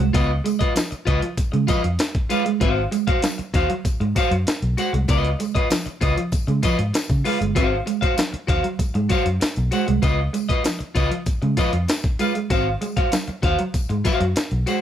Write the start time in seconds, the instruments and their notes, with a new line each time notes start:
0.00 fingered electric bass C2, clean electric guitar G#3
0.13 fingered electric bass C#2, clean electric guitar B3 F4 B4 D#5, kick, closed hi-hat, tambourine
0.44 clean electric guitar G#3, muted clean electric guitar stroke, closed hi-hat, tambourine
0.59 clean electric guitar F4 B4 D#5, muted clean electric guitar stroke, muted fingered electric bass stroke, kick, closed hi-hat
0.75 clean electric guitar F3, muted clean electric guitar stroke, snare, closed hi-hat, tambourine
0.91 muted clean electric guitar stroke, muted fingered electric bass stroke, closed hi-hat
1.05 fingered electric bass C#2, clean electric guitar F4 B4 D#5, muted clean electric guitar stroke, kick, closed hi-hat
1.21 clean electric guitar F3, muted clean electric guitar stroke, closed hi-hat
1.37 muted clean electric guitar stroke, muted fingered electric bass stroke, kick, closed hi-hat, tambourine
1.52 fingered electric bass C#3, clean electric guitar G#3, muted clean electric guitar stroke, closed hi-hat
1.67 clean electric guitar F3 F4 B4 D#5, kick, closed hi-hat, tambourine
1.83 fingered electric bass F2, muted clean electric guitar stroke, closed hi-hat
1.99 muted clean electric guitar stroke, snare, closed hi-hat, tambourine
2.15 kick, closed hi-hat
2.29 clean electric guitar G#3 F4 B4 F5, closed hi-hat, tambourine
2.45 clean electric guitar G#3, muted clean electric guitar stroke, closed hi-hat
2.60 fingered electric bass G#1, clean electric guitar C4 F#4 C5 F5, kick, closed hi-hat
2.91 clean electric guitar G#3, muted clean electric guitar stroke, closed hi-hat, tambourine
3.07 clean electric guitar F#4 C5 F5, muted clean electric guitar stroke, muted fingered electric bass stroke, kick, closed hi-hat
3.22 clean electric guitar F#3, muted clean electric guitar stroke, snare, closed hi-hat, tambourine
3.38 muted clean electric guitar stroke, muted fingered electric bass stroke, closed hi-hat
3.54 fingered electric bass D#2, clean electric guitar F#4 C5 F5, muted clean electric guitar stroke, kick, snare, closed hi-hat, tambourine
3.69 clean electric guitar F#3, muted clean electric guitar stroke, closed hi-hat
3.85 muted clean electric guitar stroke, muted fingered electric bass stroke, kick, closed hi-hat, tambourine
4.00 fingered electric bass G#2, clean electric guitar G#3, muted clean electric guitar stroke, closed hi-hat
4.15 clean electric guitar F#3 F#4 C5 F5, kick, closed hi-hat, tambourine
4.31 fingered electric bass F#2, muted clean electric guitar stroke, closed hi-hat
4.47 muted clean electric guitar stroke, muted fingered electric bass stroke, snare, closed hi-hat, tambourine
4.62 fingered electric bass B1, closed hi-hat
4.77 clean electric guitar G#3 F#4 C5 F#5, closed hi-hat, tambourine
4.93 fingered electric bass C2, clean electric guitar G#3, muted clean electric guitar stroke, closed hi-hat
5.08 fingered electric bass C#2, clean electric guitar B3 F4 B4 D#5, kick, closed hi-hat, tambourine
5.25 closed hi-hat
5.39 clean electric guitar G#3, muted clean electric guitar stroke, closed hi-hat, tambourine
5.55 clean electric guitar F4 B4 D#5, muted clean electric guitar stroke, muted fingered electric bass stroke, kick, closed hi-hat
5.70 clean electric guitar F3, muted clean electric guitar stroke, snare, closed hi-hat, tambourine
5.86 muted clean electric guitar stroke, muted fingered electric bass stroke, closed hi-hat
6.01 fingered electric bass C#2, clean electric guitar F4 B4 D#5, muted clean electric guitar stroke, kick, closed hi-hat, tambourine
6.16 clean electric guitar F3, muted clean electric guitar stroke, closed hi-hat
6.32 muted clean electric guitar stroke, muted fingered electric bass stroke, kick, closed hi-hat, tambourine
6.47 fingered electric bass C#3, clean electric guitar G#3, muted clean electric guitar stroke, closed hi-hat
6.63 clean electric guitar F3 F4 B4 D#5, kick, closed hi-hat, tambourine
6.78 fingered electric bass G#2, muted clean electric guitar stroke, closed hi-hat
6.94 muted clean electric guitar stroke, snare, closed hi-hat, tambourine
7.10 fingered electric bass C#3, kick, closed hi-hat
7.25 clean electric guitar G#3 F4 B4 F5, open hi-hat, tambourine
7.40 fingered electric bass G1, clean electric guitar G#3, muted clean electric guitar stroke, closed hi-hat
7.55 fingered electric bass G#1, clean electric guitar C4 F#4 C5 F5, kick, closed hi-hat, tambourine
7.86 clean electric guitar G#3, muted clean electric guitar stroke, closed hi-hat, tambourine
8.01 clean electric guitar F#4 C5 F5, muted clean electric guitar stroke, muted fingered electric bass stroke, kick, closed hi-hat
8.17 clean electric guitar F#3, muted clean electric guitar stroke, snare, closed hi-hat, tambourine
8.33 muted clean electric guitar stroke, muted fingered electric bass stroke, closed hi-hat
8.47 fingered electric bass D#2, clean electric guitar F#4 C5 F5, muted clean electric guitar stroke, kick, snare, closed hi-hat
8.63 clean electric guitar F#3, muted clean electric guitar stroke, closed hi-hat
8.79 muted clean electric guitar stroke, muted fingered electric bass stroke, kick, closed hi-hat, tambourine
8.94 fingered electric bass G#2, clean electric guitar G#3, muted clean electric guitar stroke, closed hi-hat
9.09 clean electric guitar F#3 F#4 C5 F5, kick, closed hi-hat, tambourine
9.25 fingered electric bass F#2, muted clean electric guitar stroke, closed hi-hat
9.40 muted clean electric guitar stroke, muted fingered electric bass stroke, snare, closed hi-hat, tambourine
9.56 fingered electric bass B1, closed hi-hat
9.71 clean electric guitar G#3 F#4 C5 F#5, closed hi-hat, tambourine
9.87 fingered electric bass C2, clean electric guitar G#3, muted clean electric guitar stroke, closed hi-hat
10.02 fingered electric bass C#2, clean electric guitar B3 F4 B4 D#5, kick, closed hi-hat, tambourine
10.33 clean electric guitar G#3, muted clean electric guitar stroke, closed hi-hat, tambourine
10.49 clean electric guitar F4 B4 D#5, muted clean electric guitar stroke, muted fingered electric bass stroke, kick, closed hi-hat
10.64 clean electric guitar F3, muted clean electric guitar stroke, snare, closed hi-hat, tambourine
10.79 muted clean electric guitar stroke, muted fingered electric bass stroke, closed hi-hat
10.95 fingered electric bass C#2, clean electric guitar F4 B4 D#5, muted clean electric guitar stroke, kick, closed hi-hat, tambourine
11.10 clean electric guitar F3, muted clean electric guitar stroke, closed hi-hat
11.26 muted clean electric guitar stroke, muted fingered electric bass stroke, kick, closed hi-hat, tambourine
11.42 fingered electric bass C#3, clean electric guitar G#3, muted clean electric guitar stroke, closed hi-hat
11.57 clean electric guitar F3 F4 B4 D#5, kick, closed hi-hat, tambourine
11.72 fingered electric bass F2, muted clean electric guitar stroke, closed hi-hat
11.88 muted clean electric guitar stroke, snare, closed hi-hat, tambourine
12.04 kick, closed hi-hat
12.19 clean electric guitar G#3 F4 B4 F5, closed hi-hat, tambourine
12.35 clean electric guitar G#3, muted clean electric guitar stroke, closed hi-hat
12.50 fingered electric bass G#1, clean electric guitar C4 F#4 C5 F5, kick, closed hi-hat, tambourine
12.81 clean electric guitar G#3, muted clean electric guitar stroke, closed hi-hat, tambourine
12.97 clean electric guitar F#4 C5 F5, muted clean electric guitar stroke, muted fingered electric bass stroke, kick, closed hi-hat
13.12 clean electric guitar F#3, muted clean electric guitar stroke, snare, closed hi-hat, tambourine
13.27 muted clean electric guitar stroke, muted fingered electric bass stroke, closed hi-hat
13.42 fingered electric bass D#2, clean electric guitar F#4 C5 F5, muted clean electric guitar stroke, kick, snare, closed hi-hat
13.58 clean electric guitar F#3, muted clean electric guitar stroke, closed hi-hat
13.74 muted clean electric guitar stroke, muted fingered electric bass stroke, kick, closed hi-hat, tambourine
13.89 fingered electric bass G#2, clean electric guitar G#3, muted clean electric guitar stroke, closed hi-hat
14.05 clean electric guitar F#3 F#4 C5 F5, kick, closed hi-hat, tambourine
14.20 fingered electric bass F#2, muted clean electric guitar stroke, closed hi-hat
14.36 muted clean electric guitar stroke, muted fingered electric bass stroke, snare, closed hi-hat, tambourine
14.51 fingered electric bass B1, closed hi-hat
14.66 clean electric guitar G#3 F#4 C5 F#5, closed hi-hat, tambourine